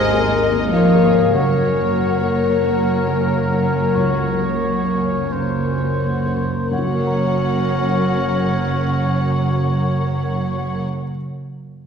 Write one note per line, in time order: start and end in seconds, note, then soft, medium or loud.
0.00 1.31 G#1 medium
0.00 1.37 D#2 medium
0.00 0.65 G#2 medium
0.00 1.40 D#3 medium
0.00 0.38 G#3 medium
0.00 0.72 G#3 medium
0.00 0.12 A#3 soft
0.00 0.13 A#3 medium
0.00 1.03 A#3 medium
0.00 1.30 A#3 medium
0.00 1.30 D#4 medium
0.00 0.13 G#4 soft
0.00 0.72 G#4 medium
0.00 0.13 A#4 medium
0.00 0.41 A#4 medium
0.00 1.31 A#4 medium
0.00 1.34 A#4 medium
0.00 0.13 C5 medium
0.00 0.69 D#5 loud
0.00 1.31 D#5 medium
0.00 0.42 G#5 loud
0.00 0.69 G#5 medium
0.12 0.43 G#3 medium
0.12 0.48 A#3 soft
0.12 0.48 G#4 soft
0.12 0.55 A#4 medium
0.12 0.49 A#4 medium
0.42 0.74 A#3 medium
0.42 1.98 A#4 soft
0.53 0.89 A#3 soft
0.53 0.90 G#4 soft
0.53 0.90 A#4 soft
0.72 1.34 F3 medium
0.72 1.04 D#4 medium
0.72 1.40 G#4 medium
0.72 1.34 A#4 medium
0.72 1.34 C#5 medium
0.72 1.34 F5 medium
0.72 1.31 F5 medium
0.94 1.31 A#3 soft
0.94 1.31 G#4 soft
0.94 1.32 A#4 soft
1.05 1.36 G#4 soft
1.34 6.42 F#1 medium
1.34 1.76 F#2 medium
1.34 5.26 F#2 medium
1.34 6.42 F#3 medium
1.34 5.26 F#3 medium
1.34 6.42 A#3 medium
1.34 1.66 A#3 medium
1.34 6.26 A#4 medium
1.34 6.01 A#4 medium
1.34 2.48 C#5 soft
1.34 5.27 C#5 medium
1.34 6.43 C#5 soft
1.34 5.26 F#5 medium
1.34 5.31 F#5 medium
1.67 3.61 A#3 soft
1.67 2.00 C#4 soft
1.79 2.17 A#3 soft
1.79 2.17 A#4 soft
1.79 2.17 C#5 soft
1.99 2.32 F#4 soft
1.99 2.95 A#4 soft
2.21 2.59 A#3 soft
2.21 2.60 A#4 soft
2.21 2.60 C#5 soft
2.31 6.21 C#4 soft
2.31 2.64 A#4 soft
2.64 3.03 A#3 soft
2.64 2.97 F#4 soft
2.64 3.97 A#4 medium
2.64 3.03 A#4 soft
2.64 3.03 C#5 soft
2.64 5.30 A#5 soft
2.96 3.29 C#4 soft
2.96 4.61 A#4 soft
3.08 3.47 A#3 soft
3.08 3.47 A#4 soft
3.08 3.48 C#5 soft
3.30 3.62 A#3 soft
3.51 3.91 A#3 soft
3.51 3.91 A#4 soft
3.51 3.92 C#5 soft
3.61 3.95 C#4 soft
3.95 4.38 C#2 soft
3.95 6.78 C#3 soft
3.95 4.26 F#4 soft
3.95 5.33 C#5 medium
4.29 4.62 A#4 soft
4.40 4.81 A#3 soft
4.40 4.81 A#4 soft
4.40 4.81 C#5 soft
4.61 4.96 F#4 soft
4.61 5.64 A#4 soft
4.85 5.27 A#3 soft
4.85 5.27 A#4 soft
4.85 5.27 C#5 soft
4.97 5.31 C#4 soft
5.30 5.73 A#3 soft
5.30 5.66 A#3 soft
5.30 5.74 C#4 soft
5.30 5.74 A#4 soft
5.30 6.71 C5 soft
5.30 7.05 A#5 soft
5.65 6.02 C#4 soft
5.65 6.91 A#4 soft
5.78 6.21 A#3 soft
5.78 6.22 C#4 soft
5.78 6.22 A#4 soft
6.01 6.37 F#4 soft
6.26 6.68 A#3 soft
6.26 6.69 C#4 soft
6.26 6.68 A#4 soft
6.37 6.70 A#4 soft
6.71 10.81 F#1 medium
6.71 10.80 F#2 soft
6.71 10.81 F#2 soft
6.71 10.81 F#3 medium
6.71 10.80 A#3 medium
6.71 10.81 C#4 medium
6.71 10.80 A#4 soft
6.71 10.82 A#4 medium
6.71 10.80 C#5 soft
6.71 10.81 C#5 medium
6.71 10.81 F#5 medium
6.71 10.82 F#5 medium
6.78 10.87 F#3 soft
6.78 10.88 F#3 soft
6.85 10.94 A#3 soft
6.85 10.95 A#3 soft
6.92 11.01 A#4 soft
6.92 11.02 A#4 soft
6.99 11.08 C#5 soft
6.99 11.09 C#5 soft
7.06 11.15 A#5 soft
7.06 11.16 A#5 soft